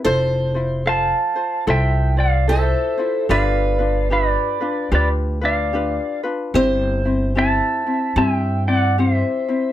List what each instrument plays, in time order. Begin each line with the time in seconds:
Already playing: steel-string acoustic guitar G4
0.04 upright bass F1, ukulele E4 F4 A4 C5, steel-string acoustic guitar C5
0.54 ukulele E4 F4 C5
0.85 ukulele F4 A4 C5, pedal steel guitar F5 A5
1.36 ukulele F4 C5
1.67 upright bass C2, ukulele E4 F4 A4 C5, pedal steel guitar E5 G5
2.16 ukulele F4 C5, pedal steel guitar D5 F5
2.48 ukulele E4 F4 A4 C5, steel-string acoustic guitar A4, pedal steel guitar C5 E5
2.98 ukulele E4 F4 C5
3.29 upright bass G1, ukulele D4 F4 G4 B4, steel-string acoustic guitar B4, pedal steel guitar D5 F5
3.78 ukulele D4 F4 B4
4.10 ukulele D4 F4 G4 B4, pedal steel guitar B4 D5
4.61 ukulele D4 F4 B4
4.92 upright bass D2, ukulele D4 F4 G4 B4, pedal steel guitar B4 D5
5.41 ukulele D4 F4 B4, pedal steel guitar D5 F5
5.73 ukulele D4 F4 G4 B4
6.23 ukulele D4 F4 B4
6.54 upright bass G1, ukulele C4 E4 G4, steel-string acoustic guitar C5
7.05 ukulele C4 E4
7.35 ukulele C4 E4 G4, pedal steel guitar E5 A5
7.86 ukulele C4 E4
8.16 upright bass G2, ukulele C4 E4 G4, pedal steel guitar E5 G#5
8.37 pedal steel guitar G5
8.68 ukulele C4 E4, pedal steel guitar D5 F#5
8.98 ukulele C4 E4 G4, pedal steel guitar C5 E5
9.49 ukulele C4 E4